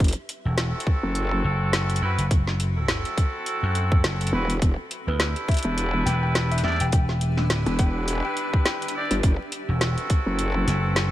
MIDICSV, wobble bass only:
0, 0, Header, 1, 2, 480
1, 0, Start_track
1, 0, Tempo, 576923
1, 2, Time_signature, 4, 2, 24, 8
1, 9247, End_track
2, 0, Start_track
2, 0, Title_t, "Wobble bass"
2, 0, Program_c, 0, 39
2, 1, Note_on_c, 0, 30, 101
2, 118, Note_off_c, 0, 30, 0
2, 859, Note_on_c, 0, 30, 102
2, 1186, Note_off_c, 0, 30, 0
2, 3600, Note_on_c, 0, 28, 94
2, 3825, Note_off_c, 0, 28, 0
2, 3842, Note_on_c, 0, 28, 96
2, 3958, Note_off_c, 0, 28, 0
2, 4698, Note_on_c, 0, 28, 103
2, 5025, Note_off_c, 0, 28, 0
2, 6377, Note_on_c, 0, 28, 94
2, 6837, Note_off_c, 0, 28, 0
2, 7579, Note_on_c, 0, 31, 96
2, 7666, Note_off_c, 0, 31, 0
2, 7683, Note_on_c, 0, 30, 99
2, 7798, Note_off_c, 0, 30, 0
2, 8539, Note_on_c, 0, 30, 100
2, 8866, Note_off_c, 0, 30, 0
2, 9247, End_track
0, 0, End_of_file